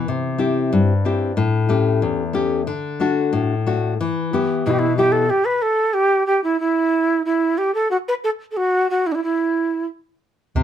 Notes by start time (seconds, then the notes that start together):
0.08 C3
0.38 C4 E4 G4
0.73 G2
1.05 C4 E4 G4
1.37 A2
1.69 A3 C#4 G4
2.02 E2
2.33 A3 C#4 G4
2.67 D3
3.00 A3 D4 F#4
3.33 A2
3.67 A3 D4 F#4
4.01 E3
4.33 B3 E4 G4
4.66 B2 E4
4.72 G4
4.79 E4
4.97 B3 E4 G4
5.12 A4
5.30 G4
5.45 B4
5.62 A4
5.94 G4
6.27 G4
6.44 E4
6.60 E4
7.26 E4
7.58 G4
7.75 A4
7.91 F#4
8.08 B4
8.24 A4
8.52 A4
8.57 F#4
8.90 F#4
9.07 E4
9.12 D4 E4
9.23 E4
10.55 C3, bombo low